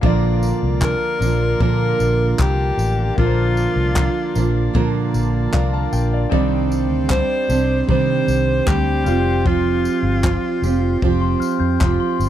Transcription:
0.01 fingered electric bass A#1, steel-string acoustic guitar A#2 D3 F3 A#3 D4 A#4, grand piano A#3 F4, harmonium F4 A#4 D5 A#5, kick
0.06 grand piano D5
0.43 tambourine
0.63 fingered electric bass C2
0.81 steel-string acoustic guitar F3 A#3 D4 A#4, alto saxophone A#4, kick, clap
1.20 fingered electric bass A#1, steel-string acoustic guitar F3 A#3 D4 A#4, tambourine
1.60 steel-string acoustic guitar A#2 D3 F3 A#3 D4 A#4, fingered electric bass A#2, alto saxophone A#4, kick
2.00 fingered electric bass A#1, tambourine
2.38 fingered electric bass C2, steel-string acoustic guitar F3 A#3 D4 A#4, alto saxophone G4, kick, clap
2.77 fingered electric bass A1, tambourine
3.15 fingered electric bass A#1, steel-string acoustic guitar A#2 D3 F3 A#3 D4, grand piano A#3 F4, alto saxophone F4, kick
3.19 grand piano A#4, steel-string acoustic guitar A#4, harmonium A5
3.26 grand piano C5
3.57 tambourine
3.76 fingered electric bass C2
3.96 steel-string acoustic guitar F3 A#3 D4 A#4, kick, clap
4.35 fingered electric bass A#1, steel-string acoustic guitar F3 A#3 D4 A#4, tambourine
4.73 steel-string acoustic guitar A#2 D3 F3 A#3 D4 A#4, fingered electric bass A#2, kick
5.14 fingered electric bass A#1, tambourine
5.52 fingered electric bass C2, steel-string acoustic guitar F3 A#3 D4 A#4, grand piano D5 F5, kick, clap
5.73 grand piano F5 A5
5.93 fingered electric bass A#1, grand piano G5, tambourine
6.13 grand piano D5 F5
6.29 fingered electric bass C2, steel-string acoustic guitar C3 D#3 G3 C4 D4 G4, grand piano C4 D#4, harmonium C4 D5 G5 C6, kick
6.34 grand piano D5
6.72 tambourine
6.90 fingered electric bass D2
7.09 steel-string acoustic guitar G3 C4 D4 G4, alto saxophone C5, kick, clap
7.48 fingered electric bass C2, steel-string acoustic guitar G3 C4 D4 G4, tambourine
7.87 steel-string acoustic guitar C3 D#3 G3 C4 D4 G4, fingered electric bass C3, alto saxophone C5, kick
8.28 fingered electric bass C2, tambourine
8.66 fingered electric bass D2, steel-string acoustic guitar G3 C4 D4 G4, alto saxophone G4, kick, clap
9.04 fingered electric bass F1, grand piano G3 F4, harmonium F4 C5 G5, steel-string acoustic guitar G4, tambourine
9.08 steel-string acoustic guitar C4 F4, grand piano C5
9.45 steel-string acoustic guitar F3 C4 F4 G4, alto saxophone F4, kick
9.85 tambourine
10.03 fingered electric bass G1
10.23 steel-string acoustic guitar F3 C4 F4 G4, kick, clap
10.62 fingered electric bass F1, steel-string acoustic guitar F4 G4, tambourine
10.66 steel-string acoustic guitar C4
11.02 fingered electric bass F1, steel-string acoustic guitar F3 C4 F4 G4, kick
11.21 glockenspiel C6
11.40 glockenspiel F6, muted fingered electric bass stroke, tambourine
11.60 fingered electric bass F2, glockenspiel G6
11.81 fingered electric bass F1, steel-string acoustic guitar F3 C4 F4 G4, kick, clap
12.00 glockenspiel C6
12.20 fingered electric bass G1, tambourine

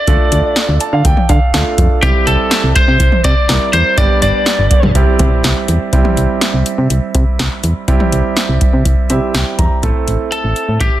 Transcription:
Already playing: lead electric guitar D5
0.07 fm bass D2, grand piano A3 D4 F4 A4, kick, closed hi-hat
0.32 fm bass D2, closed hi-hat
0.56 snare, closed hi-hat
0.69 fm bass D2
0.80 grand piano A5, closed hi-hat
0.93 fm bass D3, grand piano F5
1.05 fm bass D2, grand piano G5, kick, closed hi-hat
1.17 mid tom
1.29 fm bass D3, grand piano F5, kick, closed hi-hat
1.54 fm bass D2, grand piano A3 D4 F4 A4 F5, snare, closed hi-hat
1.78 fm bass F2, kick, closed hi-hat
2.03 fm bass C2, grand piano G3 C4 E4 G4, lead electric guitar G4, kick, closed hi-hat
2.27 fm bass C2, lead electric guitar A4, closed hi-hat
2.51 snare, closed hi-hat
2.64 fm bass C2
2.76 lead electric guitar C5, kick, closed hi-hat
2.88 fm bass C3
3.00 fm bass C2, kick, closed hi-hat
3.12 mid tom
3.24 fm bass C3, lead electric guitar D5, kick, closed hi-hat
3.49 fm bass C2, grand piano G3 C4 E4 A#4, snare, closed hi-hat
3.73 fm bass E2, lead electric guitar C5, closed hi-hat
3.98 fm bass G1, grand piano G3 B3 D4 G4, lead electric guitar D5, kick, closed hi-hat
4.22 fm bass G1, lead electric guitar D5, closed hi-hat
4.46 snare, closed hi-hat
4.59 fm bass G1
4.71 kick, closed hi-hat
4.83 fm bass G2, mid tom
4.95 fm bass C2, grand piano G3 C4 E4 G4, kick, closed hi-hat
5.19 fm bass C3, kick, closed hi-hat, mid tom
5.44 fm bass C2, snare, closed hi-hat
5.68 fm bass E2, closed hi-hat
5.93 fm bass C2, grand piano G3 C4 E4 G4, kick, closed hi-hat
6.05 mid tom
6.17 fm bass C2, closed hi-hat
6.41 snare, closed hi-hat
6.54 fm bass C2
6.66 closed hi-hat
6.78 fm bass C3
6.90 fm bass C2, closed hi-hat
7.15 fm bass C3, kick, closed hi-hat
7.39 fm bass C2, snare, closed hi-hat
7.64 fm bass E2, closed hi-hat
7.88 fm bass C2, grand piano G3 C4 E4 G4, kick, closed hi-hat
8.00 mid tom
8.12 fm bass C2, closed hi-hat
8.37 snare, closed hi-hat
8.49 fm bass C2
8.61 kick, closed hi-hat
8.73 fm bass C3
8.85 fm bass C2, kick, closed hi-hat
9.10 fm bass C3, grand piano G3 C4 E4 G4 E5, closed hi-hat
9.34 fm bass C2, grand piano G5, snare, closed hi-hat
9.59 fm bass E2, grand piano A#5, kick, closed hi-hat
9.83 fm bass A1, grand piano A3 C4 E4 A4, kick, closed hi-hat
10.07 fm bass A1, closed hi-hat
10.32 lead electric guitar A4, closed hi-hat
10.44 fm bass A1
10.56 closed hi-hat
10.68 fm bass A2
10.80 fm bass A1, lead electric guitar G4, kick, closed hi-hat

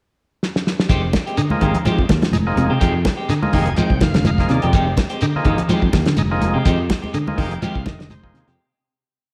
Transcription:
0.43 snare
0.56 snare
0.67 snare
0.80 snare
0.89 fingered electric bass F1, clean electric guitar D#3 G#3 C4 G4, kick, closed hi-hat, low conga, shekere
1.03 muted clean electric guitar stroke
1.13 muted clean electric guitar stroke, kick, snare, closed hi-hat, high conga, shekere
1.26 clean electric guitar G#3 C4 G4, closed hi-hat
1.37 clean electric guitar D3, tonewheel organ D#4 G#4, muted clean electric guitar stroke, closed hi-hat, shekere
1.50 tonewheel organ F3 A#3 D#4 G#4, muted fingered electric bass stroke, high conga
1.61 fingered electric bass G#1, clean electric guitar D#3 G#3 C4 G4, kick, closed hi-hat, low conga, shekere
1.74 muted clean electric guitar stroke, closed hi-hat, low conga
1.85 clean electric guitar D#3 F3 G#3 C4 G4, muted fingered electric bass stroke, closed hi-hat, high conga, shekere
1.98 fingered electric bass F2, muted clean electric guitar stroke, kick
2.09 fingered electric bass D#2, clean electric guitar D#3, muted clean electric guitar stroke, kick, snare, closed hi-hat, high conga, shekere
2.22 clean electric guitar F3, snare, closed hi-hat, high conga
2.31 fingered electric bass F1, tonewheel organ D#4 G#4, closed hi-hat, high conga, shekere
2.47 tonewheel organ F3 A#3 D#4 G#4, muted clean electric guitar stroke
2.56 fingered electric bass F1, clean electric guitar C3, muted clean electric guitar stroke, closed hi-hat, high conga, shekere
2.70 clean electric guitar C3 G#3 C4 G4
2.79 fingered electric bass F2, clean electric guitar D#3 G#3 C4 G4, kick, closed hi-hat, low conga, shekere
2.93 muted clean electric guitar stroke
3.05 muted clean electric guitar stroke, kick, snare, closed hi-hat, high conga, shekere
3.17 clean electric guitar G#3 C4 G4
3.29 clean electric guitar D3, tonewheel organ D#4 G#4, muted clean electric guitar stroke, snare, closed hi-hat, shekere
3.42 tonewheel organ F3 A#3 D#4 G#4, muted fingered electric bass stroke, high conga
3.53 fingered electric bass F1, clean electric guitar D#3 G#3 C4 G4, tonewheel organ G#5, kick, open hi-hat, low conga, shekere
3.66 muted clean electric guitar stroke, closed hi-hat, low conga
3.76 clean electric guitar D#3 F3 G#3 C4, tonewheel organ G5, muted clean electric guitar stroke, closed hi-hat, high conga, shekere
3.90 fingered electric bass C2, muted clean electric guitar stroke, kick
4.01 fingered electric bass F1, clean electric guitar D#3, tonewheel organ F5, muted clean electric guitar stroke, kick, snare, closed hi-hat, high conga, shekere
4.14 clean electric guitar D3, snare, closed hi-hat, high conga
4.25 tonewheel organ D#4 G#4 F5, closed hi-hat, high conga, shekere
4.38 tonewheel organ F3 A#3 D#4 G#4, muted clean electric guitar stroke, kick, snare
4.49 fingered electric bass D#2, clean electric guitar C3, tonewheel organ D5, muted clean electric guitar stroke, snare, closed hi-hat, shekere
4.62 fingered electric bass F2, clean electric guitar C3 G#3 C4 G4, closed hi-hat
4.73 fingered electric bass F1, clean electric guitar D#3 G#3 C4 G4, kick, closed hi-hat, low conga, shekere
4.87 muted clean electric guitar stroke
4.97 muted clean electric guitar stroke, kick, snare, closed hi-hat, high conga, shekere
5.10 clean electric guitar G#3 C4 G4, closed hi-hat
5.21 clean electric guitar D3, tonewheel organ D#4 G4, muted clean electric guitar stroke, closed hi-hat, shekere
5.35 tonewheel organ F3 A#3 D#4 G#4, muted fingered electric bass stroke
5.44 fingered electric bass G#1, clean electric guitar D#3 G#3 C4 G4, kick, closed hi-hat, low conga, shekere
5.58 muted clean electric guitar stroke, closed hi-hat, low conga
5.68 clean electric guitar D#3 F3 G#3 C4 G4, muted fingered electric bass stroke, closed hi-hat, high conga, shekere
5.82 fingered electric bass F2, muted clean electric guitar stroke, kick
5.92 fingered electric bass D#2, clean electric guitar D#3, muted clean electric guitar stroke, kick, snare, closed hi-hat, high conga, shekere
6.06 clean electric guitar D3, snare, closed hi-hat
6.17 fingered electric bass F1, tonewheel organ D#4 G#4, closed hi-hat, high conga, shekere
6.30 tonewheel organ F3 A#3 D#4 G#4, muted clean electric guitar stroke
6.41 fingered electric bass F1, muted clean electric guitar stroke, closed hi-hat, high conga, shekere
6.54 clean electric guitar C3 G#3 C4 G4
6.65 fingered electric bass F2, clean electric guitar D#3 G#3 C4 G4, kick, closed hi-hat, low conga, shekere
6.79 muted clean electric guitar stroke
6.89 muted clean electric guitar stroke, kick, snare, closed hi-hat, high conga, shekere
7.02 clean electric guitar G#3 C4 G4, high conga
7.14 clean electric guitar D3, tonewheel organ D#4 G#4, muted clean electric guitar stroke, closed hi-hat, shekere
7.27 tonewheel organ F3 A#3 D#4 G#4, muted fingered electric bass stroke, high conga
7.38 fingered electric bass F1, clean electric guitar D#3 G#3 C4 G4, tonewheel organ G5, kick, open hi-hat, low conga, shekere
7.51 muted clean electric guitar stroke, closed hi-hat
7.62 clean electric guitar D#3 F3 G#3 C4 G4, tonewheel organ F5, closed hi-hat, high conga, shekere
7.75 fingered electric bass C2, muted clean electric guitar stroke, kick
7.86 fingered electric bass F1, clean electric guitar D#3, tonewheel organ D#5, muted clean electric guitar stroke, kick, snare, closed hi-hat, high conga, shekere
7.99 clean electric guitar D3, snare, closed hi-hat
8.10 tonewheel organ D#4 G#4 C5, closed hi-hat, high conga, shekere
8.23 tonewheel organ F3 A#3 D#4 G#4, muted clean electric guitar stroke, kick
8.34 fingered electric bass D#2, clean electric guitar C3, muted clean electric guitar stroke, snare, closed hi-hat, shekere
8.47 fingered electric bass F2, clean electric guitar C3 G#3 C4 G4, snare, closed hi-hat

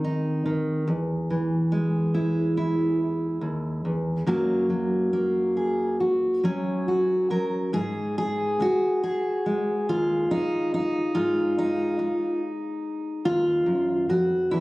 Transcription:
Already playing: steel-string acoustic guitar G#2 D#3 C4
0.04 steel-string acoustic guitar D#4
0.46 steel-string acoustic guitar D#3
0.87 steel-string acoustic guitar E2
1.30 steel-string acoustic guitar E3
1.72 steel-string acoustic guitar G#3
2.14 steel-string acoustic guitar E4
2.57 steel-string acoustic guitar E4
3.41 steel-string acoustic guitar D#2
3.85 steel-string acoustic guitar E2
4.26 steel-string acoustic guitar F#2 F#3 A#3 F#4
4.70 steel-string acoustic guitar F#3
5.13 steel-string acoustic guitar A#3
5.57 steel-string acoustic guitar G#4
6.00 steel-string acoustic guitar F#4
6.44 steel-string acoustic guitar F#3 C#4
6.88 steel-string acoustic guitar F#4
7.30 steel-string acoustic guitar F#3 A#4
7.73 steel-string acoustic guitar G#2 G#4
8.18 steel-string acoustic guitar G#4
8.60 steel-string acoustic guitar F#4, muted steel-string acoustic guitar stroke
9.04 steel-string acoustic guitar G#4
9.46 steel-string acoustic guitar G#3
9.89 steel-string acoustic guitar D#2 F4
10.31 steel-string acoustic guitar D#4, muted steel-string acoustic guitar stroke
10.74 steel-string acoustic guitar D#4
11.15 steel-string acoustic guitar G#2 F4
11.58 steel-string acoustic guitar D#4
11.99 muted steel-string acoustic guitar stroke
13.25 steel-string acoustic guitar D#2 F4
13.66 steel-string acoustic guitar F#2
14.09 steel-string acoustic guitar F2 F#4
14.51 steel-string acoustic guitar E2 E4

